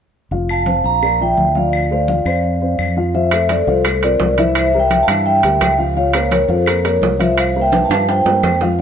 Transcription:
0.31 F1 F3 F4 F5, high conga
0.49 F5 A5, high conga, claves
0.66 C4 C5, high conga
0.84 A#1 F5 A#5
1.02 A#3 A#4 D5, high conga, claves
1.20 F3 F4 D5 E5 G5, high conga
1.37 D2, high conga
1.55 F3 F4 D5 F5, high conga
1.73 high conga, claves
1.91 A3 A4 C5 D5 F5, high conga
2.08 F3 F4 F5, high conga
2.25 F2 C4 C5, high conga, claves
2.44 high conga
2.61 C4 C5, high conga
2.79 F2, high conga, claves
2.97 F3 F4 F5
3.14 F3 F4 C5 E5 F5, high conga
3.31 A3 A4 C5, high conga, high timbale, claves
3.49 A4 D5, high conga, high timbale, low timbale
3.67 C2 F3 F4 A4 C5 F5
3.85 A3 A4 C5, high conga, high timbale, claves
4.03 C4 F4 A#4 C5 D5, high conga, high timbale
4.20 C2, high conga, low timbale
4.38 E3 E4 C5 E5, high conga, high timbale
4.55 C5 E5, high conga, high timbale, claves
4.73 G3 G4 A#4, high conga
4.79 E5 G5
4.91 high conga, high timbale, low timbale
5.03 F5 A5
5.08 G2 E3 E4 E5, high conga, high timbale, claves
5.26 E5 G5, high conga
5.43 D2 G3 G4 A#4, high conga, high timbale
5.61 C#2, high conga, high timbale, low timbale, claves
5.78 F3 F4 F5
5.96 F3 F4 C#5 F5, high conga
6.13 A#3 A#4 C5, high conga, high timbale, claves
6.31 A#4 C#5, high conga, high timbale, low timbale
6.48 F2 F3 F4 A4 C5 F5
6.66 A#3 A#4 C5, high conga, high timbale, claves
6.84 A#3 A#4 C#5, high conga, high timbale
7.02 C2, high conga, low timbale
7.19 F3 F4 C5 E5 F5, high conga, high timbale
7.37 C5 F5, high conga, high timbale, claves
7.55 A#3 A#4 C5, high conga
7.61 E5 G5
7.72 high conga, high timbale
7.85 F5 A5
7.90 G2 F3 F4 F5, high conga, high timbale, claves
8.08 C5 G5, high conga, high timbale
8.25 G2 A#3 A#4 C5, high conga, low timbale
8.43 F2, high conga, low timbale, claves
8.61 F3 F4 F5, high conga, low timbale

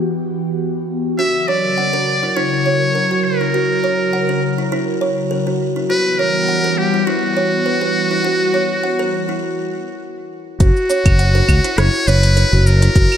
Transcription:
Already playing: E3 B3 F#4 G4
1.19 C#3 F#3 F#4 A#4 E5
1.48 C#5 D5
1.78 F#5
1.93 A#4
2.23 E4
2.36 E4 C#5
2.66 C#5
2.95 A#4
3.11 F#4
3.24 A#4
3.41 E4
3.54 F#4
3.84 C#5
4.13 F#5
4.29 A#4
4.58 E4
4.72 E4
5.01 C#5
5.31 A#4
5.47 F#4
5.76 E4
5.89 E3 G3 B3 F#4 B4 F#5
6.19 A#4 C#5
6.48 F#5
6.64 A#4
6.78 G4
6.94 E4
7.07 E4 F#4
7.37 C#5
7.66 B4
7.81 G4
8.11 E4
8.25 F#4
8.54 C#5
8.83 F#5
8.99 A#4
9.29 E4
10.60 F#1 F#4, kick, closed hi-hat, shaker
10.76 shaker
10.90 C#5, shaker
11.06 F#1, kick, closed hi-hat, claves, shaker
11.19 F#5, closed hi-hat, shaker
11.35 A#4, shaker
11.49 C#2, kick, claves, shaker
11.64 E4, closed hi-hat, shaker
11.78 F#1 E4 C#5, cross-stick, closed hi-hat, shaker
11.94 shaker
12.07 F#1 B4 C#5, shaker
12.23 closed hi-hat, shaker
12.37 A#4, closed hi-hat, shaker
12.53 F#1 F#4, shaker
12.66 A#4, shaker
12.82 E4, closed hi-hat, shaker
12.96 F#1 F#4, kick, closed hi-hat, shaker
13.12 claves, shaker

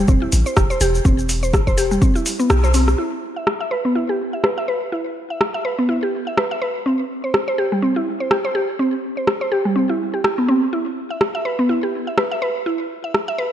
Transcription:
0.08 E1 C4, kick, cabasa
0.22 E4
0.32 A1, open hi-hat, cabasa
0.46 C5, cabasa
0.57 E1 G4, kick, cross-stick, cabasa
0.70 C5, cabasa
0.81 E1 G4, open hi-hat, cabasa
0.95 cabasa
1.05 E1 C4, kick, cabasa
1.19 cabasa
1.29 open hi-hat, cabasa
1.43 C5, cabasa
1.54 kick, cross-stick, cabasa
1.67 C5, kick, cabasa
1.78 G4, open hi-hat, cabasa
1.91 G3, cabasa
2.02 C4, kick, cabasa
2.15 E4, cabasa
2.26 open hi-hat, cabasa
2.40 B3, cabasa
2.50 B1 G4, cross-stick, cabasa
2.64 C5, cabasa
2.74 C4, open hi-hat, cabasa
2.88 cross-stick, cabasa
2.98 E4
3.36 E5
3.47 cross-stick
3.61 E5
3.71 B4
3.85 B3
3.95 E4
4.09 G4
4.33 E5
4.44 B4, cross-stick
4.58 E5
4.68 B4
4.92 E4
5.30 E5
5.41 cross-stick
5.54 E5
5.65 B4
5.79 B3
5.89 E4
6.03 G4
6.27 E5
6.38 B4, cross-stick
6.51 E5
6.62 B4
6.86 C4
7.24 C5
7.34 cross-stick
7.48 C5
7.58 G4
7.72 G3
7.82 C4
7.96 E4
8.20 C5
8.31 G4, cross-stick
8.45 C5
8.55 G4
8.79 C4
9.17 C5
9.27 cross-stick
9.41 C5
9.52 G4
9.65 G3
9.76 C4
9.89 E4
10.14 G4
10.24 G4, cross-stick
10.38 B3
10.48 C4
10.73 E4
11.10 E5
11.21 cross-stick
11.35 E5
11.45 B4
11.59 B3
11.69 E4
11.83 G4
12.07 E5
12.18 B4, cross-stick
12.31 E5
12.42 B4
12.66 E4
13.04 E5
13.14 cross-stick
13.28 E5
13.38 B4

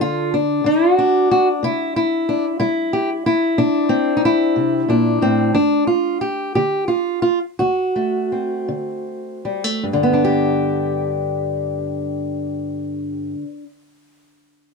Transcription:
Already playing: D2 D3 A4
0.01 F4
0.34 D4
0.64 D3 F#4
0.98 D4
1.31 F#4
1.63 C3 E4
1.96 E4
2.29 D4
2.60 G3 E4
2.93 G4
3.26 E4
3.58 C3 D4
3.89 C4
4.17 D#4
4.25 E4
4.56 C3
4.88 A#2 D4
5.21 A2 C4
5.55 G2 D4
5.87 F4
6.21 G4
6.55 D3 G4
6.88 F4
7.22 F4
7.59 D2 F#4
7.96 A3
8.32 C4
8.68 D3
9.45 G3
9.64 A3
9.83 G2
9.93 D3
10.03 B3
10.13 D4
10.25 G4

